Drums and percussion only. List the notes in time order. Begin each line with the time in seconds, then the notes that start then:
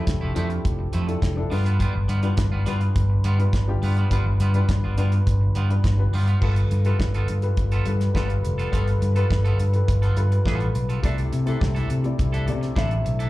0.07 kick, snare, closed hi-hat
0.36 closed hi-hat
0.50 closed hi-hat
0.65 kick, closed hi-hat
0.93 closed hi-hat
1.09 closed hi-hat
1.22 kick, snare, closed hi-hat
1.52 open hi-hat
1.66 closed hi-hat
1.80 kick, closed hi-hat
2.09 closed hi-hat
2.23 closed hi-hat
2.37 kick, snare, closed hi-hat
2.66 closed hi-hat
2.81 closed hi-hat
2.96 kick, closed hi-hat
3.24 closed hi-hat
3.40 closed hi-hat
3.53 kick, snare, closed hi-hat
3.83 open hi-hat
3.97 closed hi-hat
4.11 kick, closed hi-hat
4.40 closed hi-hat
4.54 closed hi-hat
4.69 kick, snare, closed hi-hat
4.98 closed hi-hat
5.12 closed hi-hat
5.27 kick, closed hi-hat
5.55 closed hi-hat
5.71 closed hi-hat
5.84 kick, snare, closed hi-hat
6.14 open hi-hat
6.28 closed hi-hat
6.42 kick, crash
6.56 closed hi-hat
6.71 closed hi-hat
6.85 closed hi-hat
7.00 kick, snare
7.14 closed hi-hat
7.28 closed hi-hat
7.42 closed hi-hat
7.57 kick, closed hi-hat
7.72 closed hi-hat
7.86 closed hi-hat
8.01 snare, closed hi-hat
8.15 kick, snare
8.30 closed hi-hat
8.45 closed hi-hat
8.59 closed hi-hat
8.73 kick, closed hi-hat
8.88 closed hi-hat
9.02 closed hi-hat
9.16 closed hi-hat
9.31 kick, snare
9.45 closed hi-hat
9.59 closed hi-hat
9.74 closed hi-hat
9.88 kick, closed hi-hat
10.03 closed hi-hat
10.17 closed hi-hat
10.32 closed hi-hat
10.46 kick, snare
10.60 closed hi-hat
10.75 closed hi-hat
10.90 closed hi-hat
11.04 kick, closed hi-hat
11.18 closed hi-hat
11.33 closed hi-hat
11.47 closed hi-hat
11.61 kick, snare
11.76 closed hi-hat
11.90 closed hi-hat
12.04 closed hi-hat
12.19 kick, closed hi-hat
12.34 closed hi-hat
12.48 closed hi-hat
12.63 snare, closed hi-hat
12.76 kick, snare
12.91 closed hi-hat
13.06 closed hi-hat
13.20 closed hi-hat